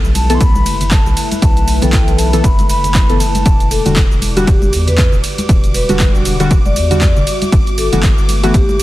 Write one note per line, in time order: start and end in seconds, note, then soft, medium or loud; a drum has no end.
0.00 3.42 A3 medium
0.00 3.42 E4 medium
0.00 3.42 B4 medium
0.04 0.38 B1 medium
0.04 shaker soft
0.15 0.36 A5 loud
0.15 open hi-hat medium
0.15 ride medium
0.15 high conga medium
0.15 shaker medium
0.30 0.42 E3 loud
0.30 0.42 B3 medium
0.30 0.42 A4 loud
0.30 closed hi-hat medium
0.30 shaker soft
0.35 0.42 C6 medium
0.41 0.67 B1 loud
0.41 0.93 B5 loud
0.41 kick loud
0.41 closed hi-hat medium
0.41 ride medium
0.41 shaker soft
0.55 high conga loud
0.55 shaker soft
0.66 1.02 F#1 medium
0.66 open hi-hat loud
0.66 ride medium
0.66 shaker medium
0.81 closed hi-hat medium
0.81 low conga medium
0.81 shaker soft
0.91 1.32 A5 loud
0.91 kick loud
0.91 clap loud
0.91 closed hi-hat medium
0.91 ride medium
0.91 high conga medium
0.91 shaker soft
1.06 1.15 B1 medium
1.06 low conga medium
1.06 shaker soft
1.17 open hi-hat medium
1.17 ride medium
1.17 shaker medium
1.31 closed hi-hat medium
1.31 high conga medium
1.31 shaker soft
1.42 1.79 B1 loud
1.42 1.80 A5 loud
1.42 kick loud
1.42 closed hi-hat medium
1.42 ride medium
1.42 shaker soft
1.57 closed hi-hat soft
1.57 shaker soft
1.68 open hi-hat loud
1.68 ride medium
1.68 shaker medium
1.82 2.03 B1 medium
1.82 2.30 E3 medium
1.82 2.30 B3 medium
1.82 2.30 A4 medium
1.82 2.20 G5 loud
1.82 closed hi-hat medium
1.82 high conga medium
1.82 low conga medium
1.82 shaker soft
1.93 kick loud
1.93 clap loud
1.93 closed hi-hat medium
1.93 ride medium
1.93 shaker soft
2.08 2.41 B1 medium
2.08 closed hi-hat soft
2.08 shaker soft
2.19 2.46 A5 loud
2.19 open hi-hat medium
2.19 ride medium
2.19 shaker medium
2.33 2.45 E3 loud
2.33 2.45 B3 medium
2.33 2.45 A4 loud
2.33 closed hi-hat medium
2.33 shaker soft
2.44 2.66 F#1 loud
2.44 2.69 B5 loud
2.44 kick loud
2.44 closed hi-hat medium
2.44 ride medium
2.44 shaker soft
2.59 closed hi-hat soft
2.59 high conga medium
2.59 shaker soft
2.69 3.06 F#1 medium
2.69 3.22 B5 loud
2.69 open hi-hat loud
2.69 ride medium
2.69 shaker medium
2.84 closed hi-hat medium
2.84 low conga medium
2.84 shaker soft
2.94 kick loud
2.94 clap loud
2.94 closed hi-hat medium
2.94 ride medium
2.94 high conga medium
2.94 shaker soft
3.09 3.43 F#1 medium
3.09 3.21 E3 medium
3.09 3.21 B3 medium
3.09 3.21 A4 medium
3.09 closed hi-hat soft
3.09 low conga medium
3.09 shaker soft
3.20 3.97 A5 loud
3.20 open hi-hat medium
3.20 ride medium
3.20 shaker medium
3.35 closed hi-hat medium
3.35 high conga medium
3.35 shaker soft
3.46 3.82 E1 loud
3.46 7.23 G3 medium
3.46 8.83 F#4 medium
3.46 5.47 D5 medium
3.46 8.83 D6 medium
3.46 kick loud
3.46 closed hi-hat medium
3.46 ride medium
3.46 shaker soft
3.60 closed hi-hat soft
3.60 shaker soft
3.71 3.94 A4 medium
3.71 open hi-hat loud
3.71 ride medium
3.71 shaker medium
3.85 4.07 E1 medium
3.85 3.98 D3 medium
3.85 3.98 G3 medium
3.85 3.98 F#4 medium
3.85 closed hi-hat medium
3.85 high conga medium
3.85 low conga medium
3.85 shaker soft
3.96 kick loud
3.96 clap loud
3.96 closed hi-hat medium
3.96 ride medium
3.96 shaker soft
4.11 4.45 E1 medium
4.11 shaker soft
4.22 open hi-hat loud
4.22 ride medium
4.22 high conga medium
4.22 shaker medium
4.37 4.48 D3 loud
4.37 4.49 G3 medium
4.37 4.49 F#4 loud
4.37 closed hi-hat medium
4.37 shaker soft
4.47 4.74 E1 loud
4.47 4.70 G4 loud
4.47 kick loud
4.47 closed hi-hat medium
4.47 ride medium
4.47 shaker soft
4.62 high conga medium
4.62 shaker soft
4.73 5.09 E2 medium
4.73 open hi-hat loud
4.73 ride medium
4.73 shaker medium
4.87 5.09 B4 loud
4.87 closed hi-hat medium
4.87 low conga medium
4.87 shaker soft
4.97 kick loud
4.97 clap loud
4.97 closed hi-hat medium
4.97 ride medium
4.97 high conga medium
4.97 shaker soft
5.12 5.22 E1 medium
5.12 low conga medium
5.12 shaker soft
5.24 open hi-hat medium
5.24 ride medium
5.24 shaker medium
5.38 closed hi-hat medium
5.38 high conga loud
5.38 shaker soft
5.49 5.86 E1 loud
5.49 7.25 E5 medium
5.49 kick loud
5.49 closed hi-hat medium
5.49 ride medium
5.49 shaker soft
5.64 closed hi-hat soft
5.64 shaker soft
5.74 5.84 B4 medium
5.74 open hi-hat loud
5.74 ride medium
5.74 shaker medium
5.89 6.10 E1 medium
5.89 6.36 D3 medium
5.89 6.37 G3 medium
5.89 6.37 F#4 medium
5.89 5.96 B4 medium
5.89 closed hi-hat medium
5.89 high conga medium
5.89 low conga medium
5.89 shaker soft
6.00 kick loud
6.00 clap loud
6.00 closed hi-hat medium
6.00 ride medium
6.00 shaker soft
6.15 6.48 E1 medium
6.15 shaker soft
6.25 open hi-hat loud
6.25 ride medium
6.25 shaker medium
6.40 6.52 D3 loud
6.40 6.52 G3 loud
6.40 6.52 F#4 loud
6.40 closed hi-hat medium
6.40 shaker soft
6.51 6.78 E1 loud
6.51 kick loud
6.51 closed hi-hat medium
6.51 ride medium
6.51 shaker soft
6.66 7.33 D5 medium
6.66 high conga medium
6.66 shaker soft
6.76 7.13 E2 medium
6.76 open hi-hat loud
6.76 ride medium
6.76 shaker medium
6.91 7.03 D3 medium
6.91 7.03 G3 medium
6.91 7.03 F#4 medium
6.91 closed hi-hat medium
6.91 low conga medium
6.91 shaker soft
7.01 kick loud
7.01 clap loud
7.01 closed hi-hat medium
7.01 ride medium
7.01 high conga medium
7.01 shaker soft
7.16 7.25 E1 medium
7.16 low conga loud
7.16 shaker soft
7.27 8.83 A3 medium
7.27 8.83 E4 medium
7.27 8.83 B4 loud
7.27 open hi-hat loud
7.27 ride medium
7.27 shaker medium
7.42 closed hi-hat medium
7.42 high conga loud
7.42 shaker soft
7.52 7.89 G1 loud
7.52 kick loud
7.52 closed hi-hat medium
7.52 ride medium
7.52 shaker soft
7.67 closed hi-hat soft
7.67 shaker soft
7.78 8.01 A4 medium
7.78 open hi-hat loud
7.78 ride medium
7.78 shaker medium
7.92 8.14 G1 medium
7.92 8.04 E3 medium
7.92 8.04 A3 medium
7.92 8.04 B3 medium
7.92 8.04 F#4 medium
7.92 closed hi-hat medium
7.92 high conga loud
7.92 low conga medium
7.92 shaker soft
8.03 kick loud
8.03 clap loud
8.03 closed hi-hat medium
8.03 ride medium
8.03 shaker soft
8.18 8.52 G1 medium
8.18 shaker soft
8.29 open hi-hat loud
8.29 ride medium
8.29 high conga medium
8.29 shaker medium
8.43 8.55 E3 loud
8.43 8.55 A3 medium
8.43 8.55 B3 medium
8.43 8.55 F#4 loud
8.43 closed hi-hat medium
8.43 shaker soft
8.54 8.81 G1 loud
8.54 8.77 G4 loud
8.54 kick loud
8.54 closed hi-hat medium
8.54 ride medium
8.54 shaker soft
8.69 high conga loud
8.69 shaker soft
8.80 8.83 G2 medium
8.80 open hi-hat loud
8.80 ride medium
8.80 shaker medium